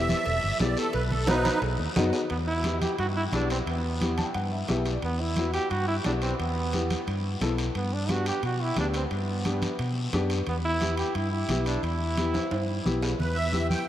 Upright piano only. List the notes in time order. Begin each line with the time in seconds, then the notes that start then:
Already playing: B3 E4 G4
0.60 B3 E4 G4
1.28 B3 D#4 F#4
1.96 B3 D#4 F#4
2.64 B3 E4 G4
3.33 B3 E4 G4
4.01 B3 E4 G4
4.18 A5
4.23 G5
4.35 F#5
4.52 E5
4.68 B3 E4 G4 E5
4.92 D5
5.38 B3 E4 F#4
6.06 B3 E4 G4
6.73 B3 E4 G4
7.41 B3 E4 A4
8.09 B3 D4 G4
8.77 B3 D4 G4
9.45 B3 D4 G4
10.13 B3 D4 G4
10.81 B3 E4 G4
11.49 B3 E4 G4
12.17 B3 E4 G4
12.85 B3 E4 G4
13.52 B3 E4 G4